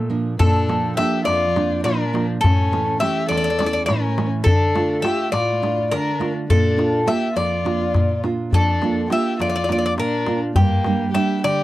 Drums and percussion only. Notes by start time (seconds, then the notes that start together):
0.40 darbuka dum
0.55 darbuka tek
0.69 darbuka tek
0.98 darbuka tek
1.27 darbuka tek
1.56 darbuka tek
1.72 darbuka tek
1.85 darbuka tek
2.15 darbuka tek
2.44 darbuka dum
2.59 darbuka tek
2.73 darbuka tek
3.01 darbuka tek
3.31 darbuka tek
3.60 darbuka tek
3.75 darbuka tek
3.88 darbuka tek
4.18 darbuka tek
4.46 darbuka dum
4.61 darbuka tek
4.76 darbuka tek
5.05 darbuka tek
5.34 darbuka tek
5.64 darbuka tek
5.78 darbuka tek
5.92 darbuka tek
6.21 darbuka tek
6.50 darbuka dum
6.65 darbuka tek
6.79 darbuka tek
6.93 darbuka tek
7.08 darbuka tek
7.37 darbuka tek
7.66 darbuka tek
7.80 darbuka tek
7.95 darbuka tek, darbuka dum
8.09 darbuka tek
8.24 darbuka tek
8.53 darbuka dum
8.82 darbuka tek
9.10 darbuka tek
9.40 darbuka tek
9.69 darbuka tek
9.84 darbuka tek
9.98 darbuka tek
10.27 darbuka tek
10.56 darbuka dum
10.70 darbuka tek
10.84 darbuka tek
11.14 darbuka tek
11.44 darbuka tek